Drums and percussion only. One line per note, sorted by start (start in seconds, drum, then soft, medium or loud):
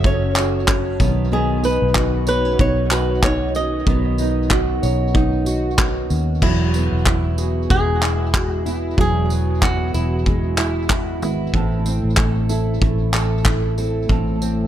0.04 kick loud
0.35 clap loud
0.35 tambourine medium
0.68 kick loud
0.68 clap loud
1.00 kick loud
1.00 tambourine medium
1.64 tambourine medium
1.95 kick loud
1.95 clap loud
2.27 tambourine medium
2.59 kick loud
2.90 clap loud
2.90 tambourine medium
3.23 kick loud
3.23 clap loud
3.55 tambourine medium
3.87 kick loud
4.18 tambourine medium
4.51 kick loud
4.51 clap loud
4.83 tambourine medium
5.15 kick loud
5.46 tambourine medium
5.78 kick loud
5.78 clap loud
6.10 tambourine medium
6.42 kick loud
6.42 crash medium
6.74 tambourine medium
7.06 kick loud
7.06 clap loud
7.38 tambourine medium
7.70 kick loud
8.02 clap medium
8.02 tambourine medium
8.34 kick loud
8.34 clap loud
8.66 tambourine medium
8.98 kick loud
9.30 tambourine medium
9.62 kick loud
9.62 clap loud
9.94 tambourine medium
10.26 kick loud
10.58 clap loud
10.58 tambourine medium
10.90 kick loud
10.90 clap loud
11.22 tambourine medium
11.54 kick loud
11.86 tambourine medium
12.17 kick loud
12.17 clap loud
12.49 tambourine medium
12.82 kick loud
13.13 clap loud
13.13 tambourine medium
13.45 kick loud
13.45 clap loud
13.78 tambourine medium
14.09 kick loud
14.42 tambourine medium